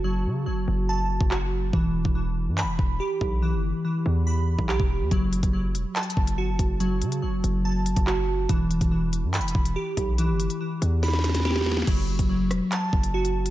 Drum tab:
CC |------------------------------------------------------------------------------------------------|------------------------------------------------------------------------------------------------|------------------------------------------------------------------------------------------------|------------------------------------------------------------------------------------------------|
HH |------------------------------------------------------------------------------------------------|------------------------------------------------------------------------------------------------|------------------------------------------------------------------------------------------------|x-----------x-----x-----------------x-----------x---x---x---------x-----------------x-----------|
CP |------------------------------------------------------------------------x-----------------------|------------------------------------------------x-----------------------------------------------|------------------------------------------------------------------------x-----------------------|------------------------------------------------x-----------------------------------------------|
SD |------------------------------------------------------------------------------------------------|------------------------------------------------------------------------------------------------|------------------------------------------------------------------------------------------------|------------------------------------------------------------------------------------------------|
BD |------------------------------------------------------------------o-----------------------------|o-----------------o-----------------------------------------o-----------------------o-----------|------------------------------------------------------------------o-----------o-----------------|o-----------------o-----------------------------------------o-----------------------o-----------|

CC |------------------------------------------------------------------------------------------------|------------------------------------------------------------------------------------------------|------------------------------------------------------------------------------------------------|x-----------------------------------------------------------------------------------------------|
HH |x-----------x-----x-----------------x-----------------------x-----x-----------------------------|x-----------x-----x-----------------x-----------x---x---x---------x-----------------x-----------|x-----------x-----x-----------------x-----------------------x-----x-----------------------------|x-----------------x-----------------x-----------x-----------------x-----------x-----------x-----|
CP |------------------------------------------------------------------------x-----------------------|------------------------------------------------x-----------------------------------------------|------------------------------------------------------------------------------------------------|------------------------------------------------x-----------------------------------------------|
SD |------------------------------------------------------------------------------------------------|------------------------------------------------------------------------------------------------|------------------------------------------------o--o--o--o--o--o--o--o--o--o--o--o--o--o--o--o--|------------------------------------r-----------------------------------------------------------|
BD |------------------------------------------------------------------o-----------------------------|o-----------------o-----------------------------------------o-----------------------o-----------|------------------------------------------------------------------------------------------------|o-----------------o-----------------------------------------o-----------------------------------|